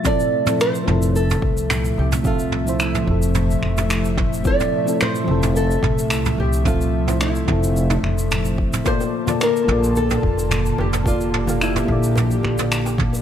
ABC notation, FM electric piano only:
X:1
M:4/4
L:1/16
Q:1/4=109
K:F
V:1 name="FM electric piano"
[F,CEA]3 [F,CEA]3 [F,CEA]8- [F,CEA]2 | [F,CAe]3 [F,CEc] z2 [F,CEA]8- [F,CEA]2 | [F,CEA]3 [F,CEA]3 [F,CEA]8- [F,CEA]2 | [F,CAe]3 [F,CEc] z2 [F,CEA]8- [F,CEA]2 |
[B,FAd]3 [B,FAd]3 [B,FAd]8- [B,FAd]2 | [B,FAd]3 [B,FAf] z2 [F,B,Ad]8- [F,B,Ad]2 |]